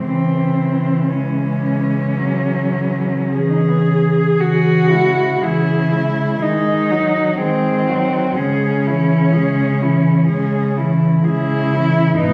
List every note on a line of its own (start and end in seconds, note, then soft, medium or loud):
0.02 4.16 C#3 soft
0.02 3.29 E3 soft
0.02 0.98 E3 soft
0.02 1.11 C4 soft
1.09 2.19 G#3 soft
1.09 3.50 C#4 soft
2.18 3.36 F#3 soft
3.34 4.41 E3 soft
3.34 4.42 G#4 soft
3.49 3.59 D#4 soft
3.58 3.70 C#4 soft
3.69 3.79 B3 soft
3.78 3.88 C#4 soft
4.40 5.31 C#3 soft
4.40 4.94 E3 soft
4.40 5.45 F#4 medium
4.40 4.91 G#4 soft
4.90 5.43 G#3 soft
4.90 5.43 E4 soft
5.42 6.30 C#3 soft
5.42 5.94 E3 soft
5.42 6.44 E4 medium
5.42 5.94 G#4 soft
5.92 6.42 G#3 soft
5.92 6.41 E4 soft
6.41 7.27 D#3 soft
6.41 6.92 G#3 soft
6.41 7.39 D#4 medium
6.41 6.93 G#4 soft
6.90 7.41 F#3 soft
6.90 7.39 F#4 soft
7.38 8.25 D#3 soft
7.38 7.89 G#3 soft
7.38 8.38 C4 medium
7.38 7.89 G#4 soft
7.87 8.37 F#3 soft
7.87 8.37 F#4 soft
8.37 9.22 C#3 soft
8.37 8.89 G#3 soft
8.37 10.77 C#4 medium
8.37 8.88 G#4 soft
8.86 9.36 E3 soft
8.86 9.34 E4 soft
9.33 10.17 C#3 soft
9.33 9.83 G#3 soft
9.33 9.83 G#4 soft
9.81 10.29 E3 soft
9.81 10.28 E4 soft
10.29 11.14 C#3 soft
10.29 10.80 G#3 soft
10.29 10.79 G#4 soft
10.77 11.27 E3 soft
10.77 11.26 E4 soft
11.24 12.09 C#3 soft
11.24 11.75 G#3 soft
11.24 12.16 E4 medium
11.24 11.74 G#4 soft
11.73 12.20 E3 soft
11.73 12.19 E4 soft
12.19 12.33 G#2 soft
12.19 12.33 B2 soft
12.19 12.33 D#4 medium
12.19 12.33 B4 soft